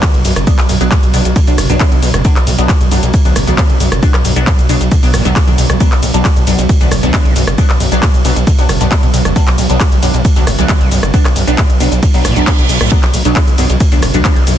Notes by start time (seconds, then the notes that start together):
Already playing: D2 B2 F#3, impact
0.03 kick, clap, closed hi-hat, ride, shaker
0.14 B1, closed hi-hat
0.25 B1 F#2, open hi-hat, shaker
0.36 F#1, cross-stick, closed hi-hat, shaker
0.47 B1 F#3 B3 D4, kick, closed hi-hat, ride, shaker
0.58 B1, clap, closed hi-hat
0.69 B1 F#2, open hi-hat, shaker
0.81 B1 F#3 B3 D4, closed hi-hat, shaker
0.91 A2, kick, clap, closed hi-hat, ride, shaker
1.03 B1, closed hi-hat, shaker
1.14 B1 B2 F#3 B3 D4, open hi-hat, shaker
1.25 B1, closed hi-hat, shaker
1.36 D3, kick, closed hi-hat, ride, shaker
1.47 B1 F#3 B3 D4, closed hi-hat, shaker
1.58 F#1 B1, cross-stick, open hi-hat, shaker
1.70 B1 F#2 F#3 B3 D4, closed hi-hat, shaker
1.80 F#3 B3 D4, kick, clap, closed hi-hat, ride, shaker
1.92 B1 B2, closed hi-hat
2.02 B1 B2, open hi-hat, shaker
2.14 F#1 D2, cross-stick, closed hi-hat, shaker
2.25 B1 F#3 B3 D4, kick, closed hi-hat, ride, shaker
2.36 B1, clap, closed hi-hat
2.47 B1 A2, open hi-hat, shaker
2.58 B1 F#3 B3 D4, closed hi-hat, shaker
2.69 kick, clap, closed hi-hat, ride, shaker
2.81 B1 C2, closed hi-hat, shaker
2.91 B1 F#2 F#3 B3 D4, open hi-hat, shaker
3.03 B1, closed hi-hat, shaker
3.14 kick, closed hi-hat, ride, shaker
3.25 B1 D2 F#3 B3 D4, closed hi-hat, shaker
3.36 F#1 A2, cross-stick, open hi-hat, shaker
3.47 B1 D2 F#3 B3 D4, closed hi-hat, shaker
3.58 kick, clap, closed hi-hat, ride, shaker
3.69 B1, closed hi-hat
3.80 B1 F#2, open hi-hat, shaker
3.92 F#1, cross-stick, closed hi-hat, shaker
4.02 B1 F#3 B3 D4, kick, closed hi-hat, ride, shaker
4.14 B1, cross-stick, clap, closed hi-hat
4.25 B1 F#2, open hi-hat, shaker
4.36 B1 F#3 B3 D4, closed hi-hat, shaker
4.47 A2, kick, clap, closed hi-hat, ride, shaker
4.58 B1, closed hi-hat, shaker
4.69 B1 B2 F#3 B3 D4, open hi-hat, shaker
4.81 B1, closed hi-hat, shaker
4.91 D3, kick, closed hi-hat, ride, shaker
5.03 B1 F#3 B3 D4, open hi-hat, shaker
5.14 A1 B2, cross-stick, open hi-hat, shaker
5.25 B1 F#3 B3 D4, closed hi-hat, shaker
5.36 kick, clap, closed hi-hat, ride, shaker
5.47 B1 D2 F#3 B3 D4, closed hi-hat
5.58 B1, open hi-hat, shaker
5.70 B1 C2, cross-stick, closed hi-hat, shaker
5.80 B1 F#3 B3 D4, kick, closed hi-hat, ride, shaker
5.92 B1, clap, closed hi-hat
6.03 B1 A2, open hi-hat, shaker
6.14 B1 F#3 B3 D4, closed hi-hat, shaker
6.25 kick, clap, closed hi-hat, ride, shaker
6.36 B1 C2, closed hi-hat, shaker
6.47 B1 F#2 F#3 B3 D4, open hi-hat, shaker
6.58 B1, closed hi-hat, shaker
6.69 kick, closed hi-hat, ride, shaker
6.81 B1 D2 F#3 B3 D4, closed hi-hat, shaker
6.91 F#1 A2, cross-stick, open hi-hat, shaker
7.03 B1 D2 F#3 B3 D4, closed hi-hat, shaker
7.14 F#3 B3 D4, kick, clap, closed hi-hat, ride, shaker
7.25 B1, closed hi-hat
7.36 B1 F#2, open hi-hat, shaker
7.47 F#1, cross-stick, closed hi-hat, shaker
7.58 B1 F#3 B3 D4, kick, closed hi-hat, ride, shaker
7.70 B1, clap, closed hi-hat
7.80 B1 F#2, open hi-hat, shaker
7.92 B1 F#3 B3 D4, closed hi-hat, shaker
8.03 A2, kick, clap, closed hi-hat, ride, shaker
8.14 B1, closed hi-hat, shaker
8.25 B1 B2 F#3 B3 D4, open hi-hat, shaker
8.36 B1, closed hi-hat, shaker
8.47 D3, kick, closed hi-hat, ride, shaker
8.59 B1 F#3 B3 D4, closed hi-hat, shaker
8.69 F#1 B1, cross-stick, open hi-hat, shaker
8.81 B1 F#2 F#3 B3 D4, closed hi-hat, shaker
8.92 F#3 B3 D4, kick, clap, closed hi-hat, ride, shaker
9.03 B1 B2, closed hi-hat
9.14 B1 B2, open hi-hat, shaker
9.25 F#1 D2, cross-stick, closed hi-hat, shaker
9.36 B1 F#3 B3 D4, kick, closed hi-hat, ride, shaker
9.47 B1, clap, closed hi-hat
9.58 B1 A2, open hi-hat, shaker
9.70 B1 F#3 B3 D4, closed hi-hat, shaker
9.80 kick, clap, closed hi-hat, ride, shaker
9.92 B1 C2, closed hi-hat, shaker
10.03 B1 F#2 F#3 B3 D4, open hi-hat, shaker
10.14 B1, closed hi-hat, shaker
10.25 kick, closed hi-hat, ride, shaker
10.36 B1 D2 F#3 B3 D4, closed hi-hat, shaker
10.47 F#1 A2, cross-stick, open hi-hat, shaker
10.59 B1 D2 F#3 B3 D4, closed hi-hat, shaker
10.69 F#3 D4, kick, clap, closed hi-hat, ride, shaker
10.81 B1, closed hi-hat
10.91 B1 F#2, open hi-hat, shaker
11.03 F#1, cross-stick, closed hi-hat, shaker
11.14 B1 F#3 B3 D4, kick, closed hi-hat, ride, shaker
11.25 B1, cross-stick, clap, closed hi-hat, shaker
11.36 B1 F#2, open hi-hat, shaker
11.47 B1 F#3 B3 D4, closed hi-hat, shaker
11.58 A2, kick, clap, closed hi-hat, ride, shaker
11.70 B1, closed hi-hat, shaker
11.80 B1 B2 F#3 B3 D4, open hi-hat, shaker
11.92 B1, closed hi-hat, shaker
12.03 D3, kick, closed hi-hat, ride, reverse cymbal, shaker
12.14 B1 F#3 B3 D4, open hi-hat, shaker
12.25 A1 B2, cross-stick, open hi-hat, shaker
12.36 B1 F#3 B3 D4, closed hi-hat, shaker
12.47 kick, clap, closed hi-hat, ride, shaker
12.59 B1, closed hi-hat, shaker
12.69 B1, open hi-hat, shaker
12.81 B1 A2, cross-stick, closed hi-hat, shaker
12.92 B1 B2 F#3 B3 D4, kick, closed hi-hat, ride, shaker
13.03 B1, clap, closed hi-hat
13.14 B1 A2, open hi-hat, shaker
13.25 B1 F#3 B3 D4, closed hi-hat, shaker
13.36 kick, clap, closed hi-hat, ride, shaker
13.47 B1 C2, closed hi-hat, shaker
13.58 B1 F#2 F#3 B3 D4, open hi-hat, shaker
13.70 B1, closed hi-hat, shaker
13.80 kick, closed hi-hat, ride, shaker
13.92 B1 D2 F#3 B3 D4, closed hi-hat, shaker
14.03 F#1 A2, cross-stick, open hi-hat, shaker
14.14 B1 D2 F#3 B3 D4, closed hi-hat, shaker
14.25 B3 D4, kick, clap, closed hi-hat, ride, shaker
14.36 B1, closed hi-hat
14.47 B1 F#2, open hi-hat, shaker